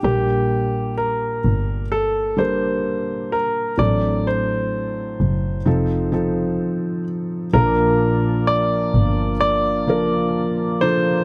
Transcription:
X:1
M:4/4
L:1/8
Q:1/4=64
K:Gm
V:1 name="Grand piano"
G2 B2 A c2 B | d c6 z | [K:Bb] B2 d2 d3 c |]
V:2 name="Felt piano"
[G,B,DB]4 z [G,B,DB]3 | [^F,CDA]4 [=F,CEA] [F,CEA]3 | [K:Bb] [F,B,DB]4 z [F,B,DB]2 [F,B,DA] |]
V:3 name="Felt piano" clef=bass
B,,3 z4 z | A,,3 z4 z | [K:Bb] B,,3 z4 z |]
V:4 name="Tonewheel organ"
z8 | z8 | [K:Bb] [F,B,D]8 |]
V:5 name="Double bass" clef=bass
B,,,3 G,,,4- G,,, | A,,,3 ^F,,, =F,,,2 z2 | [K:Bb] B,,,3 G,,,4- G,,, |]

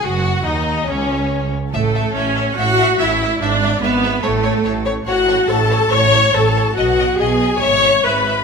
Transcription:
X:1
M:4/4
L:1/8
Q:1/4=142
K:Alyd
V:1 name="Violin section"
f2 d2 c3 z | A2 c2 f2 e2 | =d2 B2 A3 z | f2 a2 c'2 a2 |
f2 g2 c'2 b2 |]
V:2 name="Violin section"
F2 D2 C3 z | e e e e e e e e | e e e e c c c c | c c c c c c c c |
d d d d e e e e |]
V:3 name="Viola section"
F2 D2 C3 z | A,2 C2 F2 E2 | =D2 B,2 A,3 z | F2 A2 c2 A2 |
F2 G2 c2 B2 |]
V:4 name="Cello section" clef=bass
F,,2 D,,2 C,,3 z | A,,2 A,,2 A,,2 A,,2 | G,,2 G,,2 A,,2 A,,2 | A,,2 A,,2 A,,2 A,,2 |
B,,2 B,,2 G,,2 G,,2 |]
V:5 name="Double bass section" clef=bass
F,,,2 D,,2 C,,3 z | A,,,2 A,,,2 A,,,2 A,,,2 | G,,,2 G,,,2 A,,,2 A,,,2 | A,,,2 A,,,2 A,,,2 A,,,2 |
B,,,2 B,,,2 G,,,2 G,,,2 |]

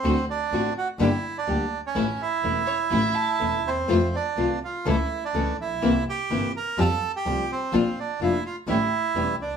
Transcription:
X:1
M:4/4
L:1/16
Q:1/4=125
K:Aphr
V:1 name="Violin"
z16 | z6 ^c2 e2 a3 z3 | z16 | z16 |
z16 |]
V:2 name="Bandoneon"
C2 D4 ^F2 E3 D4 ^C- | ^C2 E12 =C2- | C2 D4 F2 E3 D3 E2- | E2 G4 B2 A3 G3 C2- |
C2 D2 E2 F2 E6 D2 |]
V:3 name="String section"
[CD^F]2 z2 [CDF]2 z2 [B,DG]2 z2 [B,DG]2 z2 | [A,^CE]2 z2 [A,CE]2 z2 [A,CE]2 z2 [A,CE]2 z2 | [A,EF]2 z2 [A,EF]2 z2 [A,^CE]2 z2 [A,CE]2 z2 | [B,CE]2 z2 [B,CE]2 z2 [G,A,F]2 z2 [G,A,F]2 z2 |
[B,DF]2 z2 [B,DF]2 z2 [A,^CG]2 z2 [A,CG]2 z2 |]
V:4 name="Nylon-string guitar"
[D,A,C^F]2 z2 [D,A,CF]2 z2 [D,G,B,DG]2 z2 [D,G,B,DG]2 z2 | [E,A,^CE]2 z2 [E,A,CE]2 z2 [E,A,CE]2 z2 [E,A,CE]2 z2 | [C,E,A,CF]2 z2 [C,E,A,CF]2 z2 [^C,E,A,^CA]2 z2 [C,E,A,CA]2 z2 | [C,E,B,CE]2 z2 [C,E,B,CE]2 z2 [F,G,CG]2 z2 [F,G,CG]2 z2 |
[F,B,DF]2 z2 [F,B,DF]2 z2 [E,G,^CE]2 z2 [E,G,CE]2 z2 |]
V:5 name="Double bass" clef=bass
D,,2 z2 A,,,2 z2 G,,,2 z2 D,,2 z2 | A,,,2 z2 E,,,2 z2 A,,,2 z2 E,,,2 _E,,2 | F,,2 z2 C,,2 z2 ^C,,2 z2 C,,2 B,,,2 | C,,2 z2 G,,,2 z2 F,,2 z2 C,,2 z2 |
B,,,2 z2 F,,,2 z2 A,,,2 z2 E,,,2 C,,2 |]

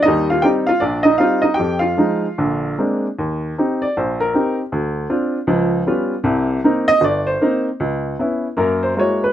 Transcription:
X:1
M:4/4
L:1/8
Q:"Swing" 1/4=155
K:Eb
V:1 name="Upright piano"
[Ee] [Ff] [Gg] [Ff] [Dd] [Ee] [Ff] [Ee] | [Gg] [Ff]6 z | z3 d c B2 z | z8 |
z3 e d c2 z | z4 B c [c_d] _c |]
V:2 name="Upright piano"
[E,,G,]2 [G,CE] z B,,,2 [G,CE] z | F,,2 [F,A,E] z [B,,,D,]2 [A,B,CD] z | E,,2 [CEG] z B,,,2 [CEG] z | D,,2 [CDF] z [_D,,F,]2 [G,_C_DF] z |
[C,,C,]2 [B,CE] z G,,,2 [B,CE] z | _D,,2 [_C_D_F] z [_G,,B,]2 [A,B,F_G] z |]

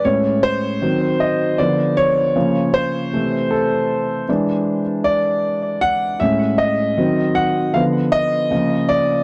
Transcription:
X:1
M:4/4
L:1/8
Q:"Swing 16ths" 1/4=78
K:Emix
V:1 name="Grand piano"
c =c2 ^d =d ^c2 =c- | =c A2 z2 d2 f | e ^d2 f =f d2 =d |]
V:2 name="Grand piano" clef=bass
[A,,G,C]2 [^D,F,^B,]2 [=D,=F,=B,]2 [C,^E,^A,]2 | [=C,E,A,]3 [E,G,D] z4 | [A,,G,C] z [^D,F,^B,]2 [=D,=F,=B,]2 [C,^E,^A,]2 |]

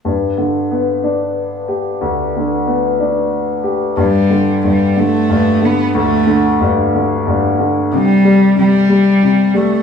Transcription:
X:1
M:6/8
L:1/8
Q:3/8=61
K:Gmix
V:1 name="Cello" clef=bass
z6 | z6 | G,2 G, A,2 B, | A,2 z4 |
G,2 G,3 A, |]
V:2 name="Grand piano" clef=bass
G,, D, B, D2 G | D,, D, B, D2 G | G,, D, G,, D, G,, D, | D,, D, G,, D, G,, D, |
C, G, C, G, C, G, |]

